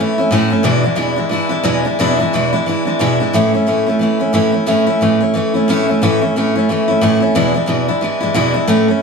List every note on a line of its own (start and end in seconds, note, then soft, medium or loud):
0.00 0.18 E3 medium
0.00 0.19 A3 medium
0.00 0.18 C#4 medium
0.00 0.17 E4 medium
0.18 0.31 A3 soft
0.18 0.31 C#4 medium
0.18 0.32 E4 medium
0.31 0.51 A2 medium
0.31 0.52 E3 loud
0.31 0.52 A3 loud
0.31 0.51 C#4 loud
0.31 0.49 E4 medium
0.50 0.64 A3 soft
0.50 0.64 C#4 medium
0.50 0.64 E4 medium
0.63 0.84 E2 medium
0.63 0.85 B2 loud
0.63 0.84 E3 loud
0.63 0.83 G#3 loud
0.63 0.83 D4 loud
0.63 0.82 E4 loud
0.83 0.95 E3 soft
0.83 0.95 G#3 medium
0.83 0.96 D4 medium
0.83 0.96 E4 medium
0.95 1.17 E2 medium
0.95 1.17 B2 medium
0.95 1.18 E3 medium
0.95 1.17 G#3 medium
0.95 1.16 D4 medium
0.95 1.15 E4 medium
1.16 1.28 E3 soft
1.16 1.30 G#3 medium
1.16 1.31 D4 medium
1.16 1.31 E4 medium
1.29 1.51 E3 medium
1.29 1.50 G#3 medium
1.29 1.49 D4 medium
1.29 1.48 E4 medium
1.49 1.63 E3 soft
1.49 1.64 G#3 soft
1.49 1.64 D4 medium
1.49 1.64 E4 medium
1.63 1.85 E2 medium
1.63 1.85 B2 medium
1.63 1.85 E3 medium
1.63 1.85 G#3 loud
1.63 1.85 D4 loud
1.63 1.83 E4 medium
1.85 1.99 E3 soft
1.85 1.98 G#3 soft
1.85 1.99 D4 medium
1.85 1.99 E4 medium
1.99 2.19 E2 loud
1.99 2.19 B2 loud
1.99 2.19 E3 loud
1.99 2.19 G#3 medium
1.99 2.19 D4 loud
1.99 2.17 E4 loud
2.19 2.33 E3 medium
2.19 2.34 G#3 medium
2.19 2.33 D4 medium
2.19 2.33 E4 medium
2.33 2.53 E2 medium
2.33 2.53 B2 medium
2.33 2.53 E3 medium
2.33 2.53 G#3 medium
2.33 2.53 D4 medium
2.33 2.51 E4 loud
2.53 2.65 E3 medium
2.53 2.67 G#3 soft
2.53 2.67 D4 medium
2.53 2.66 E4 medium
2.66 2.86 E3 medium
2.66 2.86 G#3 medium
2.66 2.86 D4 medium
2.66 2.84 E4 medium
2.85 3.00 E3 soft
2.85 3.00 G#3 medium
2.85 3.00 D4 medium
2.85 2.99 E4 medium
2.99 3.19 E2 medium
2.99 3.20 B2 loud
2.99 3.20 E3 medium
2.99 3.20 G#3 medium
2.99 3.20 D4 medium
2.99 3.19 E4 medium
3.20 3.33 E3 soft
3.20 3.34 G#3 medium
3.20 3.34 D4 medium
3.20 3.33 E4 medium
3.33 3.53 A2 medium
3.33 3.53 E3 medium
3.33 3.54 A3 loud
3.33 3.53 C#4 loud
3.33 3.52 E4 loud
3.54 3.66 A3 medium
3.54 3.67 C#4 medium
3.54 3.67 E4 medium
3.66 3.86 A2 medium
3.66 3.87 E3 medium
3.66 3.87 A3 medium
3.66 3.87 C#4 medium
3.66 3.85 E4 medium
3.86 4.00 A3 soft
3.86 4.00 C#4 medium
3.86 4.00 E4 medium
3.99 4.20 E3 medium
3.99 4.20 A3 medium
3.99 4.20 C#4 medium
3.99 4.18 E4 medium
4.20 4.32 A3 soft
4.20 4.34 C#4 medium
4.20 4.33 E4 medium
4.33 4.53 A2 medium
4.33 4.54 E3 medium
4.33 4.53 A3 medium
4.33 4.53 C#4 loud
4.33 4.51 E4 medium
4.52 4.66 A3 soft
4.52 4.67 C#4 medium
4.52 4.66 E4 medium
4.66 4.87 A2 medium
4.66 4.87 E3 loud
4.66 4.87 A3 medium
4.66 4.87 C#4 loud
4.66 4.85 E4 loud
4.87 5.01 A3 soft
4.87 5.01 C#4 medium
4.87 5.00 E4 medium
5.01 5.21 A2 medium
5.01 5.21 E3 medium
5.01 5.21 A3 medium
5.01 5.21 C#4 medium
5.01 5.19 E4 medium
5.20 5.34 A3 soft
5.20 5.35 C#4 medium
5.20 5.34 E4 medium
5.34 5.54 E3 medium
5.34 5.54 A3 medium
5.34 5.54 C#4 medium
5.34 5.53 E4 medium
5.54 5.68 A3 medium
5.54 5.68 C#4 medium
5.54 5.68 E4 medium
5.68 5.88 A2 medium
5.68 5.88 E3 loud
5.68 5.88 A3 medium
5.68 5.88 C#4 loud
5.68 5.87 E4 loud
5.88 6.02 A3 medium
5.88 6.02 C#4 medium
5.88 6.01 E4 medium
6.02 6.21 A2 medium
6.02 6.22 E3 medium
6.02 6.22 A3 loud
6.02 6.22 C#4 loud
6.02 6.20 E4 loud
6.21 6.36 A3 medium
6.21 6.36 C#4 medium
6.21 6.35 E4 medium
6.36 6.55 A2 medium
6.36 6.55 E3 medium
6.36 6.56 A3 medium
6.36 6.56 C#4 medium
6.36 6.54 E4 medium
6.55 6.69 A3 medium
6.55 6.69 C#4 medium
6.55 6.69 E4 medium
6.69 6.88 E3 medium
6.69 6.89 A3 medium
6.69 6.89 C#4 medium
6.69 6.87 E4 medium
6.88 7.01 A3 medium
6.88 7.02 C#4 medium
6.88 7.02 E4 medium
7.01 7.21 A2 medium
7.01 7.21 E3 medium
7.01 7.22 A3 medium
7.01 7.21 C#4 loud
7.01 7.19 E4 loud
7.20 7.35 A3 medium
7.20 7.35 C#4 medium
7.20 7.35 E4 medium
7.35 7.55 E2 loud
7.35 7.55 B2 loud
7.35 7.55 E3 loud
7.35 7.55 G#3 loud
7.35 7.54 D4 loud
7.35 7.53 E4 loud
7.54 7.66 E3 medium
7.54 7.66 G#3 medium
7.54 7.67 D4 medium
7.54 7.68 E4 medium
7.66 7.87 E2 medium
7.66 7.88 B2 medium
7.66 7.88 E3 medium
7.66 7.88 G#3 medium
7.66 7.88 D4 medium
7.66 7.87 E4 medium
7.88 8.00 E3 medium
7.88 8.01 G#3 medium
7.88 8.02 D4 medium
7.88 8.02 E4 medium
8.01 8.22 E3 medium
8.01 8.22 G#3 medium
8.01 8.21 D4 medium
8.01 8.19 E4 medium
8.20 8.34 E3 medium
8.20 8.34 G#3 medium
8.20 8.35 D4 medium
8.20 8.35 E4 medium
8.34 8.55 E2 loud
8.34 8.55 B2 medium
8.34 8.55 E3 loud
8.34 8.55 G#3 loud
8.34 8.53 D4 loud
8.34 8.53 E4 loud
8.54 8.67 E3 soft
8.54 8.68 G#3 soft
8.54 8.69 D4 medium
8.54 8.68 E4 medium
8.68 8.88 A2 loud
8.68 8.89 E3 loud
8.68 8.88 A3 loud
8.68 8.89 C#4 loud
8.68 8.87 E4 loud
8.88 9.01 A3 medium
8.88 9.02 C#4 medium
8.88 9.02 E4 medium